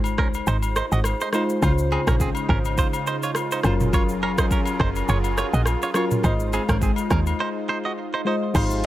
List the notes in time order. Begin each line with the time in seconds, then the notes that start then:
Already playing: G#1 G#3 D#4 F4 C5
0.04 high agogo, shaker
0.18 C2 C#4 A#4, kick, cross-stick
0.34 high agogo, shaker
0.47 G#1 D#4 C5, shaker
0.62 high agogo, shaker
0.76 D#4 C5, cross-stick, shaker
0.92 G#1 F#4 D#5, shaker
1.04 cross-stick, high agogo, shaker
1.21 D#4 C5, shaker
1.32 G#3 D#4 F4 C5, cross-stick, high agogo, shaker
1.49 shaker
1.61 C#2 C#3 C#4 D#4 E4 F4 C5, kick, high agogo, shaker
1.69 F4
1.78 shaker
1.92 C4 G#4, high agogo
2.07 A#1 C#4 A#4, kick, cross-stick, shaker
2.20 C4 G#4, kick, shaker
2.35 high agogo, shaker
2.49 G#1 C#4 A#4, kick
2.65 high agogo, shaker
2.78 F4 C5, kick, shaker
2.93 high agogo, shaker
3.07 D#4 C5, shaker
3.23 F4 C#5, shaker
3.35 cross-stick, high agogo, shaker
3.51 D#4 C5, shaker
3.63 F#1 F#3 C#4 F4 G#4 A#4 C5, cross-stick, high agogo, shaker
3.80 mid tom, shaker
3.93 F4 C#5, kick, high agogo, shaker
4.09 shaker
4.23 C#4 A#4, high agogo
4.38 D#4 C5, kick, cross-stick, shaker
4.51 C#4 A#4, kick, shaker
4.66 high agogo, shaker
4.80 F#1 D#4 C5, kick, cross-stick
4.96 high agogo, shaker
5.08 F#1 F4 C#5, shaker
5.24 high agogo, shaker
5.38 F4 C#5, cross-stick, shaker
5.53 A#1 F#4 D#5, shaker
5.66 cross-stick, high agogo, shaker
5.82 F4 C#5, shaker
5.94 F#3 C#4 F4 A#4 C#5, cross-stick, high agogo, shaker
6.11 mid tom, shaker
6.23 G#1 G#3 D#4 F4 C5 D#5, kick, high agogo, shaker
6.40 shaker
6.53 C4 G#4, high agogo, shaker
6.69 G#1 C#4 A#4, kick, cross-stick, shaker
6.81 C4 G#4, kick, shaker
6.96 high agogo, shaker
7.10 D#2 C#4 A#4, kick, cross-stick, shaker
7.26 high agogo, shaker
7.40 D#4 C5
7.69 D#4 C5
7.85 F#4 D#5
8.14 D#4 C5
8.25 G#3 D#4 F4 C5 D#5
8.54 G#1 C3 F3 G#3 D#4 F4 C5, kick, crash, high agogo, shaker
8.71 shaker